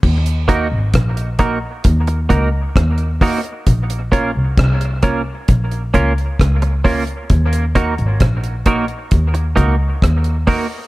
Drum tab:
CC |x---------------|----------------|----------------|
HH |-xx-xxx-xxx-xxox|xxx-xxx-xxxxxxox|xxxxxxxxxxx-xxo-|
SD |----r-------r---|----r-------r---|----r-------r---|
BD |o-o-o-o-o-o-o-o-|o-o-o-o-o-o-o-o-|o-o-o-o-o-o-o-o-|